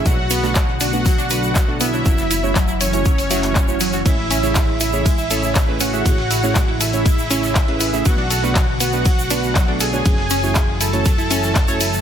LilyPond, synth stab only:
\new Staff \with { instrumentName = "Synth stab" } { \time 4/4 \key a \major \tempo 4 = 120 <a b d' fis' b'>16 r8 <a b d' fis' b'>16 r8. <a b d' fis' b'>16 r8 <a b d' fis' b'>8. <a b d' fis' a'>8 <a b d' fis' cis''>16 | <a cis' e' fis' cis''>16 r8 <a cis' e' fis' cis''>16 r8. <a cis' e' fis' cis''>16 r8 <a cis' e' fis' e''>8. <a cis' e' fis' cis''>16 r8 | <a cis' e' gis' cis''>16 r8 <a cis' e' gis' cis''>16 r8. <a cis' e' gis' cis''>16 r8 <a cis' e' gis' cis''>8. <a cis' e' gis' b'>8 <a cis' e' gis' e''>16 | <a cis' e' gis' cis''>16 r8 <a cis' e' gis' cis''>16 r8. <a cis' e' gis' cis''>16 r8 <a cis' e' gis' cis''>8. <a cis' e' gis' b'>8 <a cis' e' gis' e''>16 |
<a b d' fis' b'>16 r8 <a b d' fis' b'>16 r8. <a b d' fis' b'>16 r8 <a b d' fis' b'>8. <a b d' fis' a'>8 <a b d' fis' cis''>16 | <a cis' e' fis' cis''>16 r8 <a cis' e' fis' cis''>16 r8. <a cis' e' fis' cis''>16 r8 <a cis' e' fis' e''>8. <a cis' e' fis' cis''>16 r8 | }